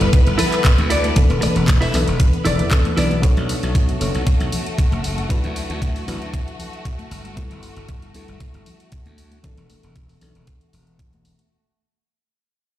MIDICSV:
0, 0, Header, 1, 8, 480
1, 0, Start_track
1, 0, Tempo, 517241
1, 1080, Time_signature, 4, 2, 24, 8
1, 11864, End_track
2, 0, Start_track
2, 0, Title_t, "Clean electric guitar"
2, 0, Program_c, 0, 27
2, 350, Note_on_c, 0, 64, 107
2, 359, Note_on_c, 0, 69, 103
2, 368, Note_on_c, 0, 71, 117
2, 595, Note_off_c, 0, 64, 0
2, 599, Note_off_c, 0, 69, 0
2, 604, Note_off_c, 0, 71, 0
2, 833, Note_on_c, 0, 64, 85
2, 841, Note_on_c, 0, 69, 73
2, 850, Note_on_c, 0, 74, 91
2, 1076, Note_off_c, 0, 64, 0
2, 1081, Note_off_c, 0, 69, 0
2, 1085, Note_off_c, 0, 74, 0
2, 1677, Note_on_c, 0, 64, 76
2, 1686, Note_on_c, 0, 69, 75
2, 1694, Note_on_c, 0, 76, 87
2, 1795, Note_off_c, 0, 64, 0
2, 1800, Note_off_c, 0, 69, 0
2, 1803, Note_off_c, 0, 76, 0
2, 2270, Note_on_c, 0, 64, 105
2, 2280, Note_on_c, 0, 69, 93
2, 2288, Note_on_c, 0, 74, 110
2, 2515, Note_off_c, 0, 64, 0
2, 2520, Note_off_c, 0, 69, 0
2, 2524, Note_off_c, 0, 74, 0
2, 2752, Note_on_c, 0, 64, 76
2, 2760, Note_on_c, 0, 69, 71
2, 2770, Note_on_c, 0, 74, 84
2, 2996, Note_off_c, 0, 64, 0
2, 3000, Note_off_c, 0, 69, 0
2, 3005, Note_off_c, 0, 74, 0
2, 11864, End_track
3, 0, Start_track
3, 0, Title_t, "Violin section"
3, 0, Program_c, 1, 48
3, 0, Note_on_c, 1, 59, 85
3, 0, Note_on_c, 1, 71, 86
3, 3004, Note_on_c, 1, 57, 81
3, 3004, Note_on_c, 1, 66, 78
3, 3012, Note_off_c, 1, 59, 0
3, 3012, Note_off_c, 1, 71, 0
3, 10692, Note_off_c, 1, 57, 0
3, 10692, Note_off_c, 1, 66, 0
3, 11864, End_track
4, 0, Start_track
4, 0, Title_t, "Reed electric piano"
4, 0, Program_c, 2, 4
4, 0, Note_on_c, 2, 55, 71
4, 0, Note_on_c, 2, 59, 69
4, 0, Note_on_c, 2, 64, 63
4, 0, Note_on_c, 2, 69, 80
4, 1049, Note_off_c, 2, 55, 0
4, 1052, Note_off_c, 2, 59, 0
4, 1055, Note_off_c, 2, 64, 0
4, 1058, Note_off_c, 2, 69, 0
4, 1073, Note_on_c, 2, 52, 84
4, 1079, Note_on_c, 2, 59, 81
4, 1085, Note_on_c, 2, 62, 75
4, 1091, Note_on_c, 2, 69, 94
4, 1769, Note_off_c, 2, 52, 0
4, 1772, Note_off_c, 2, 59, 0
4, 1775, Note_off_c, 2, 62, 0
4, 1779, Note_off_c, 2, 69, 0
4, 1792, Note_on_c, 2, 52, 69
4, 1798, Note_on_c, 2, 59, 62
4, 1803, Note_on_c, 2, 62, 64
4, 1810, Note_on_c, 2, 69, 75
4, 2493, Note_off_c, 2, 52, 0
4, 2497, Note_off_c, 2, 59, 0
4, 2499, Note_off_c, 2, 62, 0
4, 2503, Note_off_c, 2, 69, 0
4, 2516, Note_on_c, 2, 52, 75
4, 2518, Note_on_c, 2, 59, 71
4, 2522, Note_on_c, 2, 62, 71
4, 2524, Note_on_c, 2, 69, 89
4, 2731, Note_off_c, 2, 52, 0
4, 2732, Note_off_c, 2, 59, 0
4, 2734, Note_off_c, 2, 62, 0
4, 2735, Note_off_c, 2, 69, 0
4, 2753, Note_on_c, 2, 52, 78
4, 2756, Note_on_c, 2, 59, 73
4, 2758, Note_on_c, 2, 62, 71
4, 2763, Note_on_c, 2, 71, 89
4, 2970, Note_off_c, 2, 52, 0
4, 2971, Note_off_c, 2, 59, 0
4, 2972, Note_off_c, 2, 62, 0
4, 2974, Note_off_c, 2, 71, 0
4, 2988, Note_on_c, 2, 59, 85
4, 2994, Note_on_c, 2, 62, 77
4, 3001, Note_on_c, 2, 69, 75
4, 3006, Note_on_c, 2, 73, 87
4, 3687, Note_off_c, 2, 59, 0
4, 3690, Note_off_c, 2, 62, 0
4, 3693, Note_off_c, 2, 69, 0
4, 3696, Note_off_c, 2, 73, 0
4, 3710, Note_on_c, 2, 59, 71
4, 3715, Note_on_c, 2, 62, 62
4, 3722, Note_on_c, 2, 69, 62
4, 3727, Note_on_c, 2, 73, 73
4, 4888, Note_off_c, 2, 59, 0
4, 4891, Note_off_c, 2, 62, 0
4, 4894, Note_off_c, 2, 69, 0
4, 4897, Note_off_c, 2, 73, 0
4, 4908, Note_on_c, 2, 54, 79
4, 4915, Note_on_c, 2, 62, 79
4, 4921, Note_on_c, 2, 64, 75
4, 4925, Note_on_c, 2, 71, 97
4, 5607, Note_off_c, 2, 54, 0
4, 5610, Note_off_c, 2, 62, 0
4, 5613, Note_off_c, 2, 64, 0
4, 5616, Note_off_c, 2, 71, 0
4, 5629, Note_on_c, 2, 54, 68
4, 5634, Note_on_c, 2, 62, 64
4, 5641, Note_on_c, 2, 64, 61
4, 5646, Note_on_c, 2, 71, 76
4, 6807, Note_off_c, 2, 54, 0
4, 6810, Note_off_c, 2, 62, 0
4, 6814, Note_off_c, 2, 64, 0
4, 6816, Note_off_c, 2, 71, 0
4, 6829, Note_on_c, 2, 55, 82
4, 6834, Note_on_c, 2, 59, 73
4, 6841, Note_on_c, 2, 64, 75
4, 6847, Note_on_c, 2, 69, 91
4, 7527, Note_off_c, 2, 55, 0
4, 7530, Note_off_c, 2, 59, 0
4, 7534, Note_off_c, 2, 64, 0
4, 7537, Note_off_c, 2, 69, 0
4, 7550, Note_on_c, 2, 55, 65
4, 7556, Note_on_c, 2, 59, 64
4, 7562, Note_on_c, 2, 64, 61
4, 7569, Note_on_c, 2, 69, 77
4, 8728, Note_off_c, 2, 55, 0
4, 8731, Note_off_c, 2, 59, 0
4, 8734, Note_off_c, 2, 64, 0
4, 8737, Note_off_c, 2, 69, 0
4, 8752, Note_on_c, 2, 52, 83
4, 8758, Note_on_c, 2, 59, 76
4, 8764, Note_on_c, 2, 62, 73
4, 8771, Note_on_c, 2, 69, 91
4, 9449, Note_off_c, 2, 52, 0
4, 9452, Note_off_c, 2, 59, 0
4, 9455, Note_off_c, 2, 62, 0
4, 9458, Note_off_c, 2, 69, 0
4, 9473, Note_on_c, 2, 52, 66
4, 9480, Note_on_c, 2, 59, 62
4, 9484, Note_on_c, 2, 62, 63
4, 9491, Note_on_c, 2, 69, 71
4, 10650, Note_off_c, 2, 52, 0
4, 10653, Note_off_c, 2, 59, 0
4, 10655, Note_off_c, 2, 62, 0
4, 10659, Note_off_c, 2, 69, 0
4, 11864, End_track
5, 0, Start_track
5, 0, Title_t, "Slap bass"
5, 0, Program_c, 3, 36
5, 8, Note_on_c, 3, 31, 81
5, 115, Note_off_c, 3, 31, 0
5, 249, Note_on_c, 3, 31, 84
5, 326, Note_off_c, 3, 31, 0
5, 729, Note_on_c, 3, 38, 87
5, 1025, Note_off_c, 3, 38, 0
5, 1206, Note_on_c, 3, 28, 90
5, 1368, Note_off_c, 3, 28, 0
5, 1446, Note_on_c, 3, 28, 90
5, 1744, Note_off_c, 3, 28, 0
5, 1799, Note_on_c, 3, 35, 80
5, 1888, Note_off_c, 3, 35, 0
5, 1928, Note_on_c, 3, 28, 75
5, 2089, Note_off_c, 3, 28, 0
5, 2280, Note_on_c, 3, 28, 83
5, 2406, Note_on_c, 3, 40, 83
5, 2420, Note_off_c, 3, 28, 0
5, 2704, Note_off_c, 3, 40, 0
5, 2760, Note_on_c, 3, 35, 81
5, 3065, Note_off_c, 3, 35, 0
5, 3127, Note_on_c, 3, 35, 88
5, 3289, Note_off_c, 3, 35, 0
5, 3369, Note_on_c, 3, 35, 91
5, 3665, Note_off_c, 3, 35, 0
5, 3720, Note_on_c, 3, 30, 83
5, 3808, Note_off_c, 3, 30, 0
5, 3847, Note_on_c, 3, 35, 74
5, 3954, Note_off_c, 3, 35, 0
5, 4087, Note_on_c, 3, 35, 78
5, 4165, Note_off_c, 3, 35, 0
5, 4568, Note_on_c, 3, 30, 84
5, 4865, Note_off_c, 3, 30, 0
5, 5048, Note_on_c, 3, 38, 89
5, 5209, Note_off_c, 3, 38, 0
5, 5288, Note_on_c, 3, 38, 90
5, 5585, Note_off_c, 3, 38, 0
5, 5641, Note_on_c, 3, 33, 82
5, 5728, Note_off_c, 3, 33, 0
5, 5767, Note_on_c, 3, 38, 78
5, 5929, Note_off_c, 3, 38, 0
5, 6599, Note_on_c, 3, 31, 92
5, 6904, Note_off_c, 3, 31, 0
5, 6967, Note_on_c, 3, 31, 93
5, 7129, Note_off_c, 3, 31, 0
5, 7206, Note_on_c, 3, 31, 88
5, 7504, Note_off_c, 3, 31, 0
5, 7559, Note_on_c, 3, 38, 80
5, 7648, Note_off_c, 3, 38, 0
5, 7686, Note_on_c, 3, 31, 75
5, 7795, Note_off_c, 3, 31, 0
5, 7925, Note_on_c, 3, 31, 80
5, 8004, Note_off_c, 3, 31, 0
5, 8406, Note_on_c, 3, 38, 82
5, 8704, Note_off_c, 3, 38, 0
5, 8886, Note_on_c, 3, 28, 85
5, 9048, Note_off_c, 3, 28, 0
5, 9127, Note_on_c, 3, 28, 91
5, 9424, Note_off_c, 3, 28, 0
5, 9481, Note_on_c, 3, 35, 77
5, 9568, Note_off_c, 3, 35, 0
5, 9607, Note_on_c, 3, 28, 70
5, 9769, Note_off_c, 3, 28, 0
5, 9961, Note_on_c, 3, 28, 71
5, 10505, Note_off_c, 3, 28, 0
5, 11864, End_track
6, 0, Start_track
6, 0, Title_t, "Muted clean electric guitar strokes"
6, 17, Note_on_c, 9, 29, 35
6, 109, Note_off_c, 9, 29, 0
6, 1310, Note_on_c, 9, 29, 106
6, 1403, Note_off_c, 9, 29, 0
6, 1440, Note_on_c, 9, 29, 31
6, 1533, Note_off_c, 9, 29, 0
6, 1552, Note_on_c, 9, 29, 29
6, 1645, Note_off_c, 9, 29, 0
6, 1917, Note_on_c, 9, 29, 31
6, 2010, Note_off_c, 9, 29, 0
6, 11864, End_track
7, 0, Start_track
7, 0, Title_t, "Muted slap bass strokes"
7, 1081, Note_on_c, 9, 29, 41
7, 1174, Note_off_c, 9, 29, 0
7, 11864, End_track
8, 0, Start_track
8, 0, Title_t, "Drums"
8, 9, Note_on_c, 9, 42, 38
8, 102, Note_off_c, 9, 42, 0
8, 121, Note_on_c, 9, 36, 117
8, 121, Note_on_c, 9, 42, 85
8, 213, Note_off_c, 9, 42, 0
8, 214, Note_off_c, 9, 36, 0
8, 247, Note_on_c, 9, 42, 37
8, 340, Note_off_c, 9, 42, 0
8, 359, Note_on_c, 9, 46, 112
8, 364, Note_on_c, 9, 64, 71
8, 452, Note_off_c, 9, 46, 0
8, 457, Note_off_c, 9, 64, 0
8, 486, Note_on_c, 9, 39, 36
8, 487, Note_on_c, 9, 42, 36
8, 578, Note_off_c, 9, 39, 0
8, 580, Note_off_c, 9, 42, 0
8, 599, Note_on_c, 9, 39, 107
8, 601, Note_on_c, 9, 36, 118
8, 601, Note_on_c, 9, 42, 79
8, 692, Note_off_c, 9, 39, 0
8, 693, Note_off_c, 9, 36, 0
8, 694, Note_off_c, 9, 42, 0
8, 727, Note_on_c, 9, 42, 37
8, 728, Note_on_c, 9, 63, 82
8, 820, Note_off_c, 9, 42, 0
8, 821, Note_off_c, 9, 63, 0
8, 838, Note_on_c, 9, 46, 103
8, 931, Note_off_c, 9, 46, 0
8, 966, Note_on_c, 9, 42, 35
8, 972, Note_on_c, 9, 63, 55
8, 1059, Note_off_c, 9, 42, 0
8, 1064, Note_off_c, 9, 63, 0
8, 1078, Note_on_c, 9, 42, 83
8, 1081, Note_on_c, 9, 36, 115
8, 1171, Note_off_c, 9, 42, 0
8, 1173, Note_off_c, 9, 36, 0
8, 1206, Note_on_c, 9, 42, 37
8, 1299, Note_off_c, 9, 42, 0
8, 1318, Note_on_c, 9, 46, 102
8, 1322, Note_on_c, 9, 63, 73
8, 1411, Note_off_c, 9, 46, 0
8, 1415, Note_off_c, 9, 63, 0
8, 1446, Note_on_c, 9, 42, 35
8, 1539, Note_off_c, 9, 42, 0
8, 1557, Note_on_c, 9, 39, 105
8, 1559, Note_on_c, 9, 42, 82
8, 1560, Note_on_c, 9, 36, 114
8, 1562, Note_on_c, 9, 63, 57
8, 1650, Note_off_c, 9, 39, 0
8, 1651, Note_off_c, 9, 42, 0
8, 1653, Note_off_c, 9, 36, 0
8, 1655, Note_off_c, 9, 63, 0
8, 1687, Note_on_c, 9, 46, 62
8, 1779, Note_off_c, 9, 46, 0
8, 1798, Note_on_c, 9, 39, 34
8, 1800, Note_on_c, 9, 46, 103
8, 1891, Note_off_c, 9, 39, 0
8, 1893, Note_off_c, 9, 46, 0
8, 1926, Note_on_c, 9, 42, 35
8, 2019, Note_off_c, 9, 42, 0
8, 2039, Note_on_c, 9, 42, 83
8, 2040, Note_on_c, 9, 36, 109
8, 2132, Note_off_c, 9, 42, 0
8, 2133, Note_off_c, 9, 36, 0
8, 2166, Note_on_c, 9, 42, 34
8, 2259, Note_off_c, 9, 42, 0
8, 2277, Note_on_c, 9, 46, 102
8, 2281, Note_on_c, 9, 64, 72
8, 2370, Note_off_c, 9, 46, 0
8, 2374, Note_off_c, 9, 64, 0
8, 2405, Note_on_c, 9, 42, 35
8, 2498, Note_off_c, 9, 42, 0
8, 2517, Note_on_c, 9, 39, 102
8, 2518, Note_on_c, 9, 42, 80
8, 2520, Note_on_c, 9, 36, 114
8, 2609, Note_off_c, 9, 39, 0
8, 2611, Note_off_c, 9, 42, 0
8, 2613, Note_off_c, 9, 36, 0
8, 2647, Note_on_c, 9, 42, 36
8, 2652, Note_on_c, 9, 63, 67
8, 2739, Note_off_c, 9, 42, 0
8, 2744, Note_off_c, 9, 63, 0
8, 2760, Note_on_c, 9, 46, 101
8, 2853, Note_off_c, 9, 46, 0
8, 2885, Note_on_c, 9, 63, 60
8, 2886, Note_on_c, 9, 42, 35
8, 2977, Note_off_c, 9, 63, 0
8, 2979, Note_off_c, 9, 42, 0
8, 3000, Note_on_c, 9, 36, 111
8, 3001, Note_on_c, 9, 42, 82
8, 3093, Note_off_c, 9, 36, 0
8, 3094, Note_off_c, 9, 42, 0
8, 3128, Note_on_c, 9, 42, 36
8, 3221, Note_off_c, 9, 42, 0
8, 3241, Note_on_c, 9, 46, 99
8, 3334, Note_off_c, 9, 46, 0
8, 3369, Note_on_c, 9, 42, 37
8, 3462, Note_off_c, 9, 42, 0
8, 3480, Note_on_c, 9, 36, 107
8, 3480, Note_on_c, 9, 42, 82
8, 3573, Note_off_c, 9, 36, 0
8, 3573, Note_off_c, 9, 42, 0
8, 3608, Note_on_c, 9, 42, 36
8, 3701, Note_off_c, 9, 42, 0
8, 3721, Note_on_c, 9, 46, 98
8, 3814, Note_off_c, 9, 46, 0
8, 3847, Note_on_c, 9, 42, 36
8, 3940, Note_off_c, 9, 42, 0
8, 3959, Note_on_c, 9, 42, 84
8, 3960, Note_on_c, 9, 36, 106
8, 4052, Note_off_c, 9, 36, 0
8, 4052, Note_off_c, 9, 42, 0
8, 4088, Note_on_c, 9, 42, 36
8, 4181, Note_off_c, 9, 42, 0
8, 4198, Note_on_c, 9, 46, 105
8, 4206, Note_on_c, 9, 64, 67
8, 4291, Note_off_c, 9, 46, 0
8, 4299, Note_off_c, 9, 64, 0
8, 4329, Note_on_c, 9, 42, 36
8, 4422, Note_off_c, 9, 42, 0
8, 4440, Note_on_c, 9, 36, 110
8, 4440, Note_on_c, 9, 42, 79
8, 4533, Note_off_c, 9, 36, 0
8, 4533, Note_off_c, 9, 42, 0
8, 4564, Note_on_c, 9, 63, 74
8, 4568, Note_on_c, 9, 42, 33
8, 4657, Note_off_c, 9, 63, 0
8, 4661, Note_off_c, 9, 42, 0
8, 4678, Note_on_c, 9, 46, 98
8, 4771, Note_off_c, 9, 46, 0
8, 4805, Note_on_c, 9, 63, 55
8, 4807, Note_on_c, 9, 42, 33
8, 4898, Note_off_c, 9, 63, 0
8, 4900, Note_off_c, 9, 42, 0
8, 4919, Note_on_c, 9, 36, 108
8, 4920, Note_on_c, 9, 42, 80
8, 5012, Note_off_c, 9, 36, 0
8, 5012, Note_off_c, 9, 42, 0
8, 5047, Note_on_c, 9, 42, 36
8, 5140, Note_off_c, 9, 42, 0
8, 5161, Note_on_c, 9, 46, 98
8, 5253, Note_off_c, 9, 46, 0
8, 5289, Note_on_c, 9, 42, 36
8, 5381, Note_off_c, 9, 42, 0
8, 5399, Note_on_c, 9, 36, 103
8, 5403, Note_on_c, 9, 42, 81
8, 5492, Note_off_c, 9, 36, 0
8, 5496, Note_off_c, 9, 42, 0
8, 5530, Note_on_c, 9, 46, 58
8, 5623, Note_off_c, 9, 46, 0
8, 5642, Note_on_c, 9, 46, 93
8, 5735, Note_off_c, 9, 46, 0
8, 5770, Note_on_c, 9, 42, 37
8, 5863, Note_off_c, 9, 42, 0
8, 5880, Note_on_c, 9, 36, 103
8, 5884, Note_on_c, 9, 42, 82
8, 5972, Note_off_c, 9, 36, 0
8, 5977, Note_off_c, 9, 42, 0
8, 6011, Note_on_c, 9, 42, 36
8, 6104, Note_off_c, 9, 42, 0
8, 6118, Note_on_c, 9, 64, 66
8, 6122, Note_on_c, 9, 46, 95
8, 6211, Note_off_c, 9, 64, 0
8, 6215, Note_off_c, 9, 46, 0
8, 6248, Note_on_c, 9, 42, 36
8, 6341, Note_off_c, 9, 42, 0
8, 6360, Note_on_c, 9, 36, 106
8, 6361, Note_on_c, 9, 42, 83
8, 6452, Note_off_c, 9, 36, 0
8, 6454, Note_off_c, 9, 42, 0
8, 6488, Note_on_c, 9, 42, 37
8, 6488, Note_on_c, 9, 63, 76
8, 6580, Note_off_c, 9, 42, 0
8, 6581, Note_off_c, 9, 63, 0
8, 6602, Note_on_c, 9, 46, 93
8, 6694, Note_off_c, 9, 46, 0
8, 6720, Note_on_c, 9, 63, 51
8, 6728, Note_on_c, 9, 42, 37
8, 6813, Note_off_c, 9, 63, 0
8, 6821, Note_off_c, 9, 42, 0
8, 6840, Note_on_c, 9, 36, 107
8, 6840, Note_on_c, 9, 42, 87
8, 6932, Note_off_c, 9, 36, 0
8, 6932, Note_off_c, 9, 42, 0
8, 6968, Note_on_c, 9, 42, 37
8, 7061, Note_off_c, 9, 42, 0
8, 7078, Note_on_c, 9, 46, 92
8, 7171, Note_off_c, 9, 46, 0
8, 7206, Note_on_c, 9, 42, 38
8, 7299, Note_off_c, 9, 42, 0
8, 7318, Note_on_c, 9, 42, 82
8, 7320, Note_on_c, 9, 36, 103
8, 7410, Note_off_c, 9, 42, 0
8, 7413, Note_off_c, 9, 36, 0
8, 7446, Note_on_c, 9, 42, 38
8, 7539, Note_off_c, 9, 42, 0
8, 7558, Note_on_c, 9, 46, 87
8, 7651, Note_off_c, 9, 46, 0
8, 7686, Note_on_c, 9, 42, 35
8, 7779, Note_off_c, 9, 42, 0
8, 7799, Note_on_c, 9, 42, 88
8, 7800, Note_on_c, 9, 36, 94
8, 7892, Note_off_c, 9, 42, 0
8, 7893, Note_off_c, 9, 36, 0
8, 7927, Note_on_c, 9, 42, 38
8, 8019, Note_off_c, 9, 42, 0
8, 8039, Note_on_c, 9, 46, 93
8, 8044, Note_on_c, 9, 64, 68
8, 8131, Note_off_c, 9, 46, 0
8, 8137, Note_off_c, 9, 64, 0
8, 8167, Note_on_c, 9, 42, 37
8, 8260, Note_off_c, 9, 42, 0
8, 8276, Note_on_c, 9, 42, 85
8, 8280, Note_on_c, 9, 36, 103
8, 8369, Note_off_c, 9, 42, 0
8, 8373, Note_off_c, 9, 36, 0
8, 8405, Note_on_c, 9, 42, 36
8, 8405, Note_on_c, 9, 63, 71
8, 8497, Note_off_c, 9, 63, 0
8, 8498, Note_off_c, 9, 42, 0
8, 8519, Note_on_c, 9, 46, 93
8, 8612, Note_off_c, 9, 46, 0
8, 8643, Note_on_c, 9, 63, 56
8, 8646, Note_on_c, 9, 42, 36
8, 8736, Note_off_c, 9, 63, 0
8, 8738, Note_off_c, 9, 42, 0
8, 8759, Note_on_c, 9, 42, 86
8, 8761, Note_on_c, 9, 36, 107
8, 8852, Note_off_c, 9, 42, 0
8, 8854, Note_off_c, 9, 36, 0
8, 8886, Note_on_c, 9, 42, 39
8, 8978, Note_off_c, 9, 42, 0
8, 8998, Note_on_c, 9, 46, 94
8, 8999, Note_on_c, 9, 63, 69
8, 9091, Note_off_c, 9, 46, 0
8, 9091, Note_off_c, 9, 63, 0
8, 9126, Note_on_c, 9, 42, 37
8, 9219, Note_off_c, 9, 42, 0
8, 9239, Note_on_c, 9, 42, 88
8, 9241, Note_on_c, 9, 36, 103
8, 9332, Note_off_c, 9, 42, 0
8, 9334, Note_off_c, 9, 36, 0
8, 9367, Note_on_c, 9, 46, 51
8, 9460, Note_off_c, 9, 46, 0
8, 9479, Note_on_c, 9, 46, 95
8, 9571, Note_off_c, 9, 46, 0
8, 9607, Note_on_c, 9, 42, 36
8, 9700, Note_off_c, 9, 42, 0
8, 9718, Note_on_c, 9, 42, 89
8, 9721, Note_on_c, 9, 36, 98
8, 9811, Note_off_c, 9, 42, 0
8, 9813, Note_off_c, 9, 36, 0
8, 9847, Note_on_c, 9, 42, 38
8, 9940, Note_off_c, 9, 42, 0
8, 9957, Note_on_c, 9, 64, 73
8, 9960, Note_on_c, 9, 46, 92
8, 10050, Note_off_c, 9, 64, 0
8, 10053, Note_off_c, 9, 46, 0
8, 10088, Note_on_c, 9, 42, 36
8, 10180, Note_off_c, 9, 42, 0
8, 10201, Note_on_c, 9, 36, 105
8, 10201, Note_on_c, 9, 42, 83
8, 10294, Note_off_c, 9, 36, 0
8, 10294, Note_off_c, 9, 42, 0
8, 10329, Note_on_c, 9, 42, 36
8, 10336, Note_on_c, 9, 63, 75
8, 10421, Note_off_c, 9, 42, 0
8, 10428, Note_off_c, 9, 63, 0
8, 10440, Note_on_c, 9, 46, 91
8, 10532, Note_off_c, 9, 46, 0
8, 10569, Note_on_c, 9, 42, 38
8, 10574, Note_on_c, 9, 63, 47
8, 10662, Note_off_c, 9, 42, 0
8, 10666, Note_off_c, 9, 63, 0
8, 11864, End_track
0, 0, End_of_file